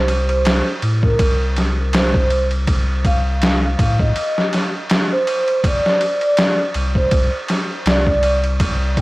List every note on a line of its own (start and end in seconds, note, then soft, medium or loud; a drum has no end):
0.00 0.62 C2 loud
0.00 0.23 C5 loud
0.08 ride medium
0.29 0.62 C5 medium
0.29 ride soft
0.45 snare loud
0.45 ride medium
0.82 1.16 A2 medium
0.82 ride medium
1.03 1.37 A#4 medium
1.03 kick medium
1.19 3.76 C2 medium
1.19 kick loud
1.19 ride medium
1.56 snare soft
1.56 ride medium
1.93 2.46 C5 medium
1.93 snare loud
1.93 ride medium
2.14 kick medium
2.30 ride medium
2.51 ride soft
2.67 kick loud
2.67 ride medium
3.05 3.57 F5 medium
3.05 kick medium
3.05 ride medium
3.42 snare loud
3.42 ride medium
3.65 3.97 F5 medium
3.79 4.12 A2 medium
3.79 kick loud
3.79 ride medium
3.99 4.48 D#5 medium
3.99 kick loud
4.16 ride medium
4.38 snare soft
4.53 snare soft
4.53 ride medium
4.90 snare loud
4.90 ride medium
5.13 5.60 C5 loud
5.27 ride medium
5.48 ride soft
5.64 6.17 D5 medium
5.64 kick loud
5.64 ride medium
5.86 snare soft
6.01 ride medium
6.21 6.55 D5 medium
6.21 ride soft
6.37 snare loud
6.37 ride medium
6.74 7.08 C2 medium
6.74 ride medium
6.95 7.29 C5 medium
6.95 kick medium
7.11 7.30 C2 loud
7.11 kick loud
7.11 ride medium
7.48 snare soft
7.48 ride medium
7.86 9.01 C2 loud
7.86 8.38 D5 loud
7.86 snare loud
7.86 ride medium
8.07 kick medium
8.23 ride medium
8.44 ride soft
8.60 kick loud
8.60 ride medium
8.97 kick medium
8.97 ride medium